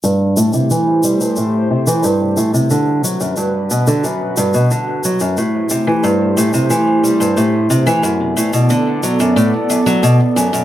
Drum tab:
SH |x-xxx-xxx--xx-xx|x-xxx-xxx-xxx-xx|x-x-x-xxx-xxx-xx|x-xxx-xxx-xxx-xx|